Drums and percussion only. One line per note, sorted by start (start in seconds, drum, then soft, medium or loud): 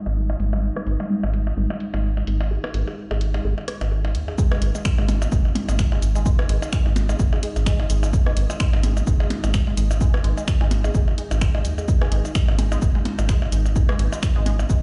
0.06 closed hi-hat soft
0.06 percussion blips soft
0.30 percussion blips medium
0.40 closed hi-hat medium
0.53 percussion blips medium
0.76 cross-stick medium
0.76 percussion blips soft
0.87 closed hi-hat medium
1.00 percussion blips medium
1.23 percussion blips medium
1.34 closed hi-hat medium
1.47 percussion blips soft
1.70 percussion blips medium
1.80 closed hi-hat medium
1.94 closed hi-hat soft
1.94 percussion blips medium
2.17 percussion blips soft
2.27 closed hi-hat medium
2.41 percussion blips medium
2.64 cross-stick medium
2.64 percussion blips medium
2.74 closed hi-hat medium
2.88 percussion blips soft
3.11 percussion blips medium
3.21 closed hi-hat loud
3.34 percussion blips medium
3.58 percussion blips soft
3.68 cross-stick medium
3.68 closed hi-hat medium
3.81 closed hi-hat soft
3.81 percussion blips medium
4.05 percussion blips medium
4.15 closed hi-hat medium
4.28 percussion blips soft
4.38 kick loud
4.38 shaker medium
4.52 cross-stick medium
4.52 percussion blips medium
4.62 closed hi-hat loud
4.75 percussion blips soft
4.75 shaker soft
4.85 finger snap loud
4.85 kick loud
4.85 shaker medium
4.98 percussion blips medium
5.09 closed hi-hat medium
5.09 percussion blips loud
5.09 shaker soft
5.22 percussion blips medium
5.22 shaker soft
5.32 kick loud
5.32 shaker medium
5.45 percussion blips soft
5.55 closed hi-hat medium
5.55 percussion blips loud
5.69 closed hi-hat soft
5.69 percussion blips medium
5.69 shaker soft
5.79 finger snap medium
5.79 kick loud
5.79 shaker medium
5.92 percussion blips medium
6.02 closed hi-hat medium
6.02 shaker medium
6.15 percussion blips soft
6.15 shaker soft
6.26 kick loud
6.26 shaker medium
6.39 cross-stick medium
6.39 percussion blips medium
6.49 closed hi-hat loud
6.62 percussion blips medium
6.62 shaker soft
6.73 finger snap loud
6.73 kick loud
6.73 shaker medium
6.86 percussion blips soft
6.96 closed hi-hat loud
6.96 percussion blips loud
6.96 shaker soft
7.09 percussion blips medium
7.09 shaker soft
7.19 kick loud
7.19 shaker medium
7.33 percussion blips medium
7.43 closed hi-hat medium
7.56 closed hi-hat soft
7.56 percussion blips soft
7.56 shaker soft
7.66 finger snap loud
7.66 kick loud
7.66 shaker soft
7.80 percussion blips medium
7.90 closed hi-hat loud
7.90 shaker medium
8.03 percussion blips medium
8.03 shaker soft
8.13 kick loud
8.13 shaker medium
8.26 cross-stick medium
8.26 percussion blips soft
8.37 closed hi-hat loud
8.50 percussion blips medium
8.50 shaker soft
8.60 finger snap loud
8.60 kick loud
8.60 shaker medium
8.73 percussion blips medium
8.83 closed hi-hat loud
8.83 percussion blips loud
8.83 shaker soft
8.97 percussion blips soft
8.97 shaker soft
9.07 kick loud
9.07 shaker medium
9.20 percussion blips medium
9.30 closed hi-hat loud
9.30 percussion blips loud
9.44 closed hi-hat soft
9.44 percussion blips medium
9.44 shaker soft
9.54 finger snap loud
9.54 kick loud
9.54 shaker soft
9.67 percussion blips soft
9.77 closed hi-hat loud
9.77 shaker medium
9.91 percussion blips medium
9.91 shaker soft
10.01 kick loud
10.01 shaker medium
10.14 cross-stick medium
10.14 percussion blips medium
10.24 closed hi-hat loud
10.38 percussion blips soft
10.38 shaker soft
10.48 finger snap medium
10.48 kick loud
10.48 shaker medium
10.61 percussion blips medium
10.71 closed hi-hat loud
10.71 percussion blips medium
10.71 shaker soft
10.84 percussion blips medium
10.84 shaker soft
10.95 kick loud
10.95 shaker medium
11.08 percussion blips soft
11.18 closed hi-hat loud
11.31 closed hi-hat soft
11.31 percussion blips medium
11.31 shaker soft
11.41 finger snap medium
11.41 kick loud
11.41 shaker soft
11.55 percussion blips medium
11.65 closed hi-hat loud
11.65 shaker medium
11.78 percussion blips soft
11.78 shaker soft
11.88 kick loud
11.88 shaker medium
12.02 cross-stick medium
12.02 percussion blips medium
12.12 closed hi-hat medium
12.25 percussion blips soft
12.25 shaker soft
12.35 finger snap medium
12.35 kick loud
12.35 shaker soft
12.48 percussion blips medium
12.59 closed hi-hat loud
12.59 percussion blips medium
12.59 shaker soft
12.72 percussion blips medium
12.72 shaker soft
12.82 kick loud
12.82 shaker medium
12.95 percussion blips soft
13.05 closed hi-hat medium
13.05 percussion blips medium
13.19 closed hi-hat soft
13.19 percussion blips medium
13.19 shaker soft
13.29 finger snap medium
13.29 kick loud
13.29 shaker soft
13.42 percussion blips medium
13.52 closed hi-hat medium
13.52 shaker medium
13.66 percussion blips soft
13.66 shaker soft
13.76 kick loud
13.76 shaker medium
13.89 cross-stick medium
13.89 percussion blips medium
13.99 closed hi-hat medium
14.13 percussion blips medium
14.13 shaker soft
14.23 finger snap medium
14.23 kick loud
14.23 shaker medium
14.36 percussion blips soft
14.46 closed hi-hat medium
14.46 percussion blips medium
14.46 shaker soft
14.59 percussion blips medium
14.59 shaker soft
14.70 kick loud
14.70 shaker medium